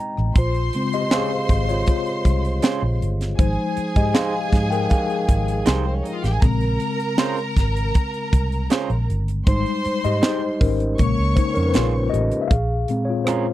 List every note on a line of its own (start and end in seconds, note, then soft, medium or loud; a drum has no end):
0.00 0.38 D#5 medium
0.00 0.38 G5 medium
0.00 0.34 A#5 medium
0.17 0.34 A1 medium
0.17 cross-stick soft
0.35 0.69 A#1 medium
0.35 0.90 F4 medium
0.35 2.98 C5 medium
0.35 0.90 C5 medium
0.35 2.98 C6 loud
0.35 kick loud
0.35 closed hi-hat medium
0.54 closed hi-hat soft
0.73 1.84 C#3 soft
0.73 1.84 G#3 medium
0.73 1.84 C4 medium
0.73 closed hi-hat medium
0.93 1.11 G4 medium
0.93 1.13 D#5 medium
0.93 closed hi-hat soft
1.11 1.29 G#3 medium
1.11 1.30 C#4 medium
1.11 1.30 F4 medium
1.11 1.66 G#4 medium
1.11 1.30 C5 medium
1.11 1.71 F5 loud
1.11 snare loud
1.11 closed hi-hat medium
1.49 1.83 G#1 medium
1.49 kick medium
1.49 closed hi-hat medium
1.69 1.87 F4 medium
1.69 1.88 C#5 medium
1.69 closed hi-hat soft
1.86 2.98 F4 medium
1.86 2.97 C5 medium
1.86 kick medium
1.86 closed hi-hat medium
2.06 closed hi-hat soft
2.25 2.59 C2 medium
2.25 kick medium
2.25 closed hi-hat medium
2.45 closed hi-hat soft
2.62 2.81 G#3 medium
2.62 2.81 C#4 medium
2.62 2.82 F4 medium
2.62 2.82 C5 medium
2.62 snare loud
2.62 closed hi-hat loud
2.82 2.99 A#1 medium
3.02 3.35 G1 medium
3.02 closed hi-hat medium
3.21 snare soft
3.21 closed hi-hat medium
3.38 3.56 G#1 medium
3.38 4.49 F3 soft
3.38 4.49 G#3 soft
3.38 3.93 D#4 medium
3.38 5.74 G#4 medium
3.38 3.92 C5 medium
3.38 5.74 G#5 medium
3.38 kick loud
3.38 closed hi-hat medium
3.77 muted fingered electric bass stroke soft
3.77 closed hi-hat medium
3.96 4.13 G#2 medium
3.96 4.06 G4 medium
3.96 4.05 D#5 medium
3.96 kick medium
3.96 closed hi-hat soft
4.14 4.33 G#3 medium
4.14 4.33 D#4 medium
4.14 4.33 G4 medium
4.14 4.68 G#4 medium
4.14 4.33 C5 medium
4.14 4.73 F5 medium
4.14 snare loud
4.14 closed hi-hat medium
4.52 4.86 G#2 medium
4.52 4.87 F3 soft
4.52 4.87 G#3 soft
4.52 4.87 D#4 soft
4.52 kick medium
4.52 snare soft
4.52 closed hi-hat medium
4.71 4.90 A#4 medium
4.71 4.91 G5 medium
4.71 closed hi-hat soft
4.90 6.01 G#4 medium
4.90 6.00 F5 medium
4.90 kick medium
4.90 closed hi-hat medium
5.10 closed hi-hat soft
5.29 5.62 G#1 medium
5.29 kick medium
5.29 closed hi-hat medium
5.48 closed hi-hat soft
5.66 6.00 C2 medium
5.66 5.84 G#3 medium
5.66 5.84 D#4 medium
5.66 5.85 G4 medium
5.66 5.85 C5 medium
5.66 snare loud
5.66 closed hi-hat loud
5.85 5.95 C4 medium
5.85 5.95 C5 medium
5.94 6.04 C#4 medium
5.94 6.04 C#5 medium
6.05 6.14 D#4 medium
6.05 6.14 D#5 medium
6.05 closed hi-hat medium
6.14 6.23 F4 medium
6.14 6.24 F5 medium
6.24 6.41 A1 medium
6.24 6.34 G4 medium
6.24 6.33 G5 medium
6.24 snare soft
6.24 closed hi-hat medium
6.32 6.42 G#4 medium
6.32 6.42 G#5 medium
6.42 6.76 A#1 loud
6.42 6.93 C#3 soft
6.42 6.93 G#3 soft
6.42 6.94 C4 medium
6.42 9.04 A#4 medium
6.42 9.04 A#5 medium
6.42 kick loud
6.42 closed hi-hat medium
6.61 closed hi-hat soft
6.80 closed hi-hat medium
7.00 closed hi-hat soft
7.18 7.36 G#3 medium
7.18 7.37 C#4 medium
7.18 7.37 F4 medium
7.18 7.37 C5 medium
7.18 snare loud
7.18 closed hi-hat medium
7.38 closed hi-hat soft
7.57 7.90 G#1 medium
7.57 kick medium
7.57 snare soft
7.57 closed hi-hat medium
7.77 closed hi-hat soft
7.94 kick medium
7.94 closed hi-hat medium
8.14 closed hi-hat soft
8.33 8.66 C2 medium
8.33 kick medium
8.33 closed hi-hat medium
8.52 closed hi-hat soft
8.70 8.89 G#3 medium
8.70 8.89 C#4 medium
8.70 8.89 F4 medium
8.70 8.89 C5 medium
8.70 snare medium
8.70 closed hi-hat loud
8.90 9.06 A#1 loud
8.90 closed hi-hat soft
9.10 9.43 G1 medium
9.10 closed hi-hat medium
9.28 closed hi-hat medium
9.46 9.64 G#1 loud
9.46 10.57 G3 soft
9.46 10.57 G#3 soft
9.46 10.01 D#4 medium
9.46 10.59 C5 medium
9.46 10.06 C5 medium
9.46 10.59 C6 medium
9.46 kick loud
9.46 closed hi-hat medium
9.66 closed hi-hat soft
9.85 muted fingered electric bass stroke soft
9.85 closed hi-hat medium
10.04 10.21 G#2 medium
10.04 10.14 G4 medium
10.04 10.13 D#5 loud
10.04 closed hi-hat soft
10.22 10.40 G#3 medium
10.22 10.41 D#4 medium
10.22 10.59 D#4 medium
10.22 10.41 G4 medium
10.22 10.62 C5 loud
10.22 10.41 C5 medium
10.22 snare loud
10.22 closed hi-hat medium
10.60 10.94 G#1 medium
10.60 11.56 C#4 medium
10.60 11.53 A#4 medium
10.60 kick medium
10.60 open hi-hat medium
10.80 closed hi-hat soft
10.98 11.16 A#1 medium
10.98 11.49 C#3 medium
10.98 11.49 G#3 soft
10.98 11.50 A#3 medium
10.98 12.11 C#5 medium
10.98 12.11 C#6 medium
10.98 kick medium
10.98 closed hi-hat medium
11.19 11.35 C#2 medium
11.36 11.55 D#4 medium
11.36 11.56 C5 medium
11.36 kick medium
11.36 closed hi-hat medium
11.54 11.73 F2 medium
11.54 11.68 C#4 medium
11.54 11.67 A#4 medium
11.54 closed hi-hat soft
11.67 11.74 B4 medium
11.73 12.09 A#1 medium
11.73 11.93 G#3 medium
11.73 11.93 C#4 medium
11.73 11.93 F4 medium
11.73 11.90 C5 medium
11.73 11.94 C5 medium
11.73 snare medium
11.73 closed hi-hat loud
12.10 12.42 G4 medium
12.10 12.43 D#5 loud
12.14 12.30 A1 medium
12.14 closed hi-hat medium
12.31 closed hi-hat medium
12.42 12.50 E5 medium
12.48 12.84 A#1 medium
12.48 13.04 G#4 medium
12.48 13.08 F5 loud
12.48 kick loud
12.48 closed hi-hat medium
12.88 13.53 A#2 medium
12.88 13.53 G#3 soft
12.88 13.53 C4 medium
12.88 closed hi-hat medium
13.05 13.26 C#5 medium
13.10 13.27 F4 medium
13.24 13.45 G#3 medium
13.24 13.45 C#4 medium
13.24 13.46 F4 medium
13.24 13.53 F4 medium
13.24 13.53 C5 medium
13.24 cross-stick loud
13.24 closed hi-hat medium
13.29 13.46 A#4 medium